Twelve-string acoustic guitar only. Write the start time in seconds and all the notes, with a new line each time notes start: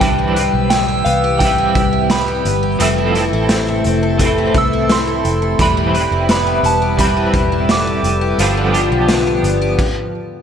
Already playing: B3 G4
0.01 G3
0.19 E4
0.36 G4
0.71 B3
0.88 G4
1.06 B3
1.24 G4
1.41 G3
1.58 E4
1.75 G4
1.93 E4
2.10 B3
2.28 G4
2.46 B3
2.63 G4
2.80 E3
2.98 E4
3.15 A4
3.33 E4
3.51 C4
3.68 A4
3.86 C4
4.03 A4
4.20 E3
4.38 E4
4.56 A4
4.73 E4
4.90 C4
5.07 A4
5.25 C4
5.42 A4
5.60 G3
5.77 E4
5.95 G4
6.12 E4
6.29 B3
6.47 G4
6.64 B3
6.82 G4
6.99 G3
7.17 E4
7.34 G4
7.52 E4
7.70 B3
7.87 G4
8.05 B3
8.21 G4
8.39 F3
8.57 D4
8.75 G4
8.92 D4
9.09 B3
9.27 G4
9.44 B3
9.62 G4